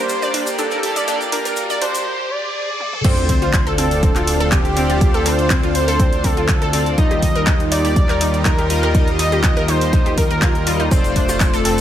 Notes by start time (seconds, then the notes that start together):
Already playing: G3 A#3 G4 C5 D5, riser
0.09 closed hi-hat, shaker
0.22 D5, closed hi-hat, shaker
0.34 D4, open hi-hat
0.47 closed hi-hat, shaker
0.59 D4 A4, closed hi-hat, shaker
0.71 A#4, closed hi-hat, shaker
0.83 A#3 G4 D5, open hi-hat
0.96 D5, closed hi-hat, shaker
1.08 A#3 D4 G4 D5, closed hi-hat, shaker
1.21 closed hi-hat, shaker
1.32 D4 A#4, open hi-hat
1.45 A#4, closed hi-hat, shaker
1.56 closed hi-hat, shaker
1.70 D5, closed hi-hat, shaker
1.81 D4 C5, open hi-hat
1.95 open hi-hat, shaker
2.31 D5
2.80 high tom
2.93 mid tom
3.04 D2 C4 D4 F4 A4 C5 D5 F5, kick, closed hi-hat, crash, sub drop
3.17 closed hi-hat
3.29 C4, kick, open hi-hat
3.42 F4, closed hi-hat
3.53 kick, clap, closed hi-hat
3.67 A4, closed hi-hat
3.78 C4 A4, open hi-hat
3.91 open hi-hat
4.03 C4, kick, closed hi-hat
4.16 F4, clap, closed hi-hat
4.27 open hi-hat
4.40 A4, closed hi-hat
4.52 C4 G4, kick, clap, closed hi-hat
4.65 closed hi-hat
4.77 C4 F4 D5, open hi-hat
4.90 F4, closed hi-hat
5.01 C4 F4 D5, kick, closed hi-hat
5.14 A4, closed hi-hat
5.26 C4 C5, open hi-hat
5.39 closed hi-hat
5.50 C4, kick, clap, closed hi-hat
5.63 F4, closed hi-hat
5.75 C5, open hi-hat
5.88 A4, open hi-hat
6.00 C4, kick, closed hi-hat
6.13 closed hi-hat
6.24 C4 A4, kick, open hi-hat
6.37 F4, closed hi-hat
6.48 kick, clap, closed hi-hat
6.62 A4, closed hi-hat
6.73 C4 F4 D5, open hi-hat
6.86 closed hi-hat
6.98 D#2 G3 D#4 F4 G4 D#5, kick, closed hi-hat
7.11 G4, closed hi-hat
7.22 kick, open hi-hat
7.36 A#4, closed hi-hat
7.47 D#4, kick, clap, closed hi-hat
7.60 closed hi-hat
7.72 D#4 D5, open hi-hat
7.85 G4, open hi-hat
7.96 kick, closed hi-hat
8.09 A#4, clap, closed hi-hat
8.21 D#4, open hi-hat
8.34 closed hi-hat
8.45 D#4 A#4, kick, clap, closed hi-hat
8.58 G4, closed hi-hat
8.70 G3 F4 D#5, open hi-hat
8.83 A#4, closed hi-hat
8.95 G3 D#4 F4 D#5, kick, closed hi-hat
9.08 closed hi-hat
9.19 D#4 D#5, open hi-hat
9.32 G4, closed hi-hat
9.44 kick, clap, closed hi-hat
9.57 A#4, closed hi-hat
9.68 D#4 C5, open hi-hat
9.81 open hi-hat
9.93 D#4, kick, closed hi-hat
10.06 G4, closed hi-hat
10.18 A#4, kick, open hi-hat
10.31 A#4, closed hi-hat
10.42 F4, kick, clap, closed hi-hat
10.55 closed hi-hat
10.67 G3 F4 D#5, open hi-hat
10.80 D#4, closed hi-hat
10.91 F1 A3 C4 D4 F4 A4 C5 D5, kick, closed hi-hat, shaker
11.04 closed hi-hat, shaker
11.16 D4, kick, open hi-hat
11.29 F4, closed hi-hat, shaker
11.40 kick, clap, closed hi-hat, shaker
11.54 A4, closed hi-hat, shaker
11.65 C4 A4, open hi-hat